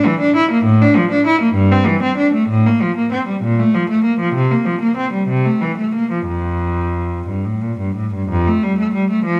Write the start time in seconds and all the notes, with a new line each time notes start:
0.06 E3
0.21 D4
0.36 E4
0.51 A#3
0.64 A2
0.82 D4
0.97 F3
1.12 D4
1.27 E4
1.41 A#3
1.55 G2
1.72 C4
1.87 E3
2.02 C4
2.17 D4
2.34 A3
2.49 A2
2.66 A#3
2.82 F3
2.97 A#3
3.12 C4
3.28 G3
3.42 A#2
3.59 A3
3.74 F3
3.90 A3
4.04 A#3
4.20 F3
4.34 C3
4.51 A#3
4.65 F3
4.82 A#3
4.97 C4
5.13 G3
5.28 C3
5.45 A3
5.61 E3
5.78 A3
5.95 A#3
6.11 F3
6.26 F2
7.28 G2
7.45 A2
7.61 A#2
7.79 G2
7.96 A2
8.14 G2
8.29 F2
8.47 A3
8.63 G3
8.78 A3
8.95 G3
9.10 A3
9.25 F3